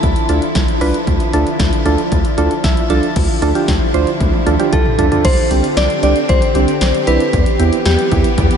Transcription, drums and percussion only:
0.03 kick, closed hi-hat
0.16 closed hi-hat
0.29 closed hi-hat
0.42 closed hi-hat
0.55 kick, snare, closed hi-hat
0.68 closed hi-hat
0.81 open hi-hat
0.94 closed hi-hat
1.07 kick, closed hi-hat
1.20 closed hi-hat
1.33 closed hi-hat
1.47 closed hi-hat
1.59 kick, snare, closed hi-hat
1.73 closed hi-hat
1.86 closed hi-hat
1.98 closed hi-hat
2.12 kick, closed hi-hat
2.25 closed hi-hat
2.38 closed hi-hat
2.51 closed hi-hat
2.64 kick, snare, closed hi-hat
2.77 closed hi-hat
2.90 closed hi-hat
3.03 closed hi-hat
3.16 kick, closed hi-hat, crash
3.42 closed hi-hat
3.55 closed hi-hat
3.68 kick, snare, closed hi-hat
3.94 closed hi-hat
4.07 closed hi-hat
4.20 kick, closed hi-hat, high tom
4.33 high tom
4.47 closed hi-hat, mid tom
4.60 closed hi-hat, mid tom
4.73 kick, closed hi-hat
4.86 mid tom
4.99 closed hi-hat, floor tom
5.12 closed hi-hat, floor tom
5.25 kick, closed hi-hat, crash
5.38 closed hi-hat
5.51 closed hi-hat
5.64 closed hi-hat
5.77 snare, closed hi-hat
5.90 closed hi-hat
6.03 closed hi-hat
6.16 closed hi-hat
6.29 kick, closed hi-hat
6.42 closed hi-hat
6.55 closed hi-hat
6.68 closed hi-hat
6.81 snare, closed hi-hat
6.95 closed hi-hat
7.07 closed hi-hat
7.20 closed hi-hat
7.33 kick, closed hi-hat
7.46 closed hi-hat
7.60 closed hi-hat
7.73 closed hi-hat
7.85 snare, closed hi-hat
7.99 closed hi-hat
8.12 kick, closed hi-hat
8.24 closed hi-hat
8.38 kick, closed hi-hat
8.51 closed hi-hat

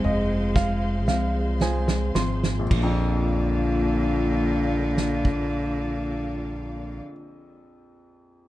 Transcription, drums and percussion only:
0.04 floor tom
0.56 kick, snare
1.08 snare
1.61 snare
1.88 snare
2.15 snare
2.43 snare
2.71 kick, crash
4.97 snare
5.25 kick

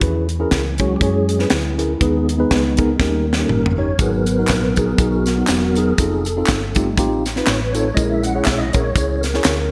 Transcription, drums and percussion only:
0.01 kick, closed hi-hat
0.29 closed hi-hat
0.51 kick, snare, closed hi-hat
0.78 kick, closed hi-hat
1.01 kick, closed hi-hat
1.29 closed hi-hat
1.39 snare
1.50 snare, closed hi-hat
1.79 closed hi-hat
2.01 kick, closed hi-hat
2.29 closed hi-hat
2.51 kick, snare, closed hi-hat
2.77 kick, closed hi-hat
3.00 kick, snare
3.33 snare
3.49 mid tom
3.66 floor tom
3.99 kick, closed hi-hat, tambourine
4.26 closed hi-hat, tambourine
4.47 kick, snare, clap, closed hi-hat, tambourine
4.76 kick, closed hi-hat, tambourine
4.98 kick, closed hi-hat, tambourine
5.26 snare, closed hi-hat, tambourine
5.47 snare, clap, closed hi-hat, tambourine
5.75 closed hi-hat, tambourine
5.98 kick, closed hi-hat, tambourine
6.25 closed hi-hat, tambourine
6.47 kick, snare, clap, closed hi-hat, tambourine
6.75 kick, closed hi-hat, tambourine
6.98 kick, closed hi-hat, tambourine
7.25 snare, closed hi-hat, tambourine
7.36 snare
7.46 snare, clap, closed hi-hat, tambourine
7.75 closed hi-hat, tambourine
7.97 kick, closed hi-hat, tambourine
8.23 closed hi-hat, tambourine
8.45 kick, snare, clap, closed hi-hat, tambourine
8.73 kick, closed hi-hat, tambourine
8.96 kick, closed hi-hat, tambourine
9.23 snare, closed hi-hat, tambourine
9.34 snare
9.44 snare, clap, closed hi-hat, tambourine

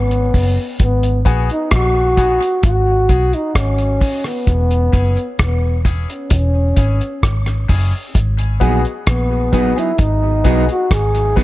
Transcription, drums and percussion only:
0.11 closed hi-hat
0.34 kick, open hi-hat
0.80 kick, closed hi-hat
1.03 closed hi-hat
1.26 kick, closed hi-hat
1.49 closed hi-hat
1.71 kick, cross-stick, closed hi-hat
2.17 kick, closed hi-hat
2.42 closed hi-hat
2.63 kick, closed hi-hat
3.09 kick, closed hi-hat
3.33 closed hi-hat
3.55 kick, cross-stick, closed hi-hat
3.78 closed hi-hat
4.01 kick, open hi-hat
4.24 cross-stick
4.47 kick, closed hi-hat
4.71 closed hi-hat
4.93 kick, closed hi-hat
5.17 closed hi-hat
5.39 kick, cross-stick, closed hi-hat
5.85 kick, closed hi-hat
6.10 closed hi-hat
6.30 kick, closed hi-hat
6.77 kick, closed hi-hat
7.01 closed hi-hat
7.23 kick, cross-stick, closed hi-hat
7.46 cross-stick, closed hi-hat
7.69 kick, open hi-hat
8.15 kick, closed hi-hat
8.39 closed hi-hat
8.61 kick, closed hi-hat
8.85 closed hi-hat
9.07 kick, cross-stick, closed hi-hat
9.53 kick, closed hi-hat
9.78 closed hi-hat
9.98 kick, closed hi-hat
10.45 kick, closed hi-hat
10.69 closed hi-hat
10.91 kick, cross-stick, closed hi-hat
11.15 closed hi-hat
11.37 kick, open hi-hat

